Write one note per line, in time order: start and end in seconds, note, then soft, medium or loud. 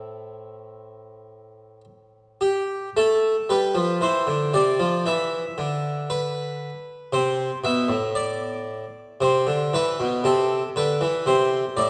0.00 2.88 A2 medium
0.00 2.89 A3 soft
0.00 2.90 C4 soft
0.00 1.81 E4 medium
0.00 1.84 A4 medium
2.41 2.87 G4 medium
2.97 3.34 A3 medium
2.97 3.49 A4 medium
3.49 3.74 G3 medium
3.49 3.94 B4 medium
3.75 4.00 F3 soft
4.01 4.26 E3 soft
4.01 4.54 C5 medium
4.27 4.52 D3 soft
4.54 4.78 C3 soft
4.54 5.06 D5 medium
4.79 5.04 F3 soft
5.06 5.43 E3 soft
5.06 6.10 E5 medium
5.58 6.69 D3 soft
6.10 7.13 B4 medium
7.13 7.49 C3 medium
7.13 7.57 C5 medium
7.64 7.88 B2 medium
7.64 8.08 E5 medium
7.88 8.83 A2 soft
8.15 9.21 D5 medium
9.21 9.45 C3 medium
9.21 9.73 C5 medium
9.47 9.71 D3 medium
9.74 9.98 E3 medium
9.74 10.17 B4 medium
10.00 10.23 B2 medium
10.24 10.61 C3 medium
10.24 10.68 A4 medium
10.76 11.00 D3 medium
10.76 11.27 B4 medium
11.01 11.25 E3 medium
11.26 11.63 C3 medium
11.26 11.77 C5 medium
11.77 11.90 A2 medium
11.77 11.90 D5 medium